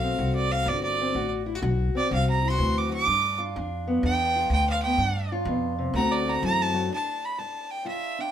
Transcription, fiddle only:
Already playing: F5
0.35 D5
0.51 F5
0.68 D5
0.83 D5
1.97 D5
2.14 F5
2.30 A#5
2.48 C6
2.78 D6
2.93 D6
4.05 G5
4.53 G5
4.69 F5
4.82 G5
5.95 A#5
6.11 D5
6.29 A#5
6.44 A#5
6.61 A5
6.94 A5
7.24 B5
7.39 A5
7.70 G5
7.88 E5
8.20 G5

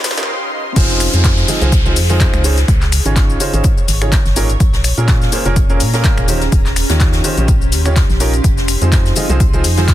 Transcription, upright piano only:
0.18 D#3 C#4 D#4 F4 G4 A#4
0.76 F3 C4 D#4 F4 G#4 C5
1.14 F3 C4 D#4 F4 G#4 C5
1.48 F3 C4 D#4 F4 G#4 D#5
1.61 F3 C4 D#4 F4 G#4 C5
1.86 F3 C4 D#4 F4 G#4 C5
2.10 F3 C4 D#4 F4 G#4 C5
2.44 C#3 C#4 D#4 F4 G#4 C5
3.06 C#3 C#4 D#4 F4 G#4 C#5
3.40 C#3 C#4 D#4 F4 G#4 C5
3.54 C#3 C#4 D#4 F4 G#4 C5
4.02 C#3 C#4 D#4 F4 G#4 C#5
4.36 A#2 C#4 D#4 F4 G#4 A#4
4.98 A#2 A#3 C#4 F4 G#4 A#4
5.32 A#2 A#3 C#4 F4 G#4 C5
5.46 A#2 A#3 C#4 F4 G#4 A#4
5.70 A#2 A#3 C#4 F4 G#4 A#4
5.94 A#2 A#3 C#4 F4 G#4 A#4
6.28 D#3 C#4 D#4 F4 G4 C5
6.90 D#3 C#4 D#4 F4 G4 C#5
7.24 D#3 C#4 D#4 F4 G4 C5
7.38 D#3 C#4 D#4 F4 G4 C5
7.86 D#3 C#4 D#4 F4 G4 C#5
8.20 C#4 D#4 F4 G4 A#4
8.82 F3 C4 D#4 F4 G#4 C5
9.16 F3 C4 D#4 F4 G#4 D#5
9.30 F3 C4 D#4 F4 G#4 C5
9.54 F3 C4 D#4 F4 G#4 C5
9.78 F3 C4 D#4 F4 G#4 C5

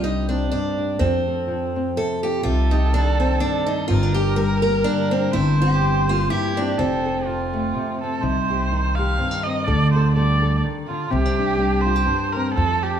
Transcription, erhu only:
2.43 A4
3.88 A#4
5.32 C5
6.30 G4
6.78 A4
7.27 F4
8.01 A4
8.22 C5
8.95 F5
9.44 D#5
9.65 D5
9.92 C5
10.14 D5
10.88 F4
11.11 G4
11.81 C5
12.32 A#4
12.54 A4
12.83 G4

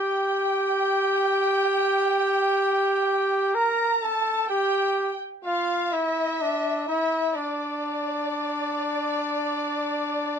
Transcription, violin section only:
Already playing: G5
3.55 A#5
4.03 A5
4.49 G5
5.46 F5
5.93 E5
6.88 E5
7.35 D5

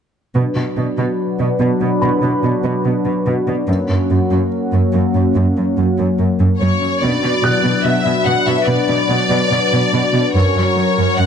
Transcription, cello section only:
0.35 B2
0.56 B2
0.77 B2
0.98 B2
1.40 B2
1.60 B2
1.81 B2
2.02 B2
2.22 B2
2.43 B2
2.64 B2
2.84 B2
3.06 B2
3.26 B2
3.47 B2
3.68 F#2
3.89 F#2
4.10 F#2
4.31 F#2
4.73 F#2
4.94 F#2
5.15 F#2
5.36 F#2
5.57 F#2
5.78 F#2
5.99 F#2
6.19 F#2
6.40 F#2
6.61 F#2
6.81 F#2
7.02 B2
7.23 B2
7.43 B2
7.64 B2
7.84 B2
8.05 B2
8.26 B2
8.47 B2
8.67 B2
8.88 B2
9.09 B2
9.30 B2
9.51 B2
9.72 B2
9.92 B2
10.13 B2
10.35 F#2
10.55 F#2
10.76 F#2
10.97 F#2
11.18 F#2

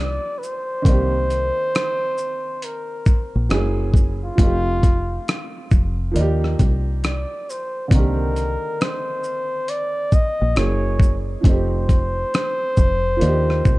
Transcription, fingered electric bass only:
Already playing: C2
0.85 C2
3.35 A#1
3.51 F#1
4.39 F1
5.72 F1
6.16 D#2
6.60 C2
7.92 C2
10.41 A#1
10.57 F#1
11.45 F1
12.78 F1
13.22 D#2
13.66 C2

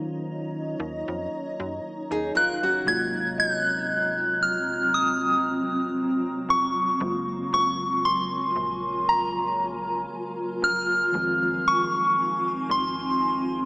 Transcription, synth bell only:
2.37 F#6
2.88 G#6
3.40 F#6
4.43 F6
4.94 D#6
6.50 C#6
7.54 C#6
8.05 C6
9.09 A#5
10.64 F6
11.68 C#6
12.71 C6

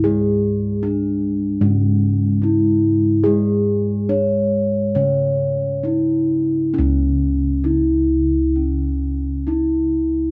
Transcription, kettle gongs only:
Already playing: G#2
0.04 G#4
0.83 D4
1.61 G#2
2.42 D4
3.24 G#4
4.09 D4
4.96 C#3
5.83 D4
6.74 C#4
6.78 C#2
7.64 D4
9.48 D4

